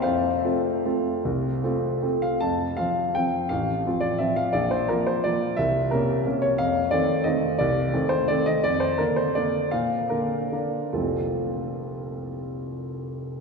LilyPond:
<<
  \new Staff \with { instrumentName = "Grand piano" } { \time 3/4 \key f \major \tempo 4 = 166 <c'' f''>2.~ | <c'' f''>2~ <c'' f''>8 f''8 | a''4 f''4 g''4 | f''4. d''8 e''8 f''8 |
d''8 c''8 bes'8 c''8 d''4 | e''4 bes'4 r8 des''8 | f''4 d''4 ees''4 | d''4. c''8 d''8 ees''8 |
d''8 c''8 bes'8 c''8 d''4 | f''4 bes'4 r4 | <f,, c, f a c' f'>2.~ | <f,, c, f a c' f'>2. | }
  \new Staff \with { instrumentName = "Grand piano" } { \time 3/4 \key f \major f,4 <a c' f'>4 <a c' f'>4 | c,4 <a c' f'>4 <a c' f'>4 | f,4 <f c' f'>4 <f c' f'>4 | a,,4 <f c' f'>4 <f c' f'>4 |
bes,,4 <f bes f'>4 <f bes f'>4 | c,4 <c bes des'>4 <c bes des'>4 | f,4 <ees a c'>4 <ees a c'>4 | c,4 <ees a c'>4 <ees a c'>4 |
f,4 <d bes d'>4 <d bes d'>4 | bes,4 <d bes d'>4 <d bes d'>4 | r2. | r2. | }
>>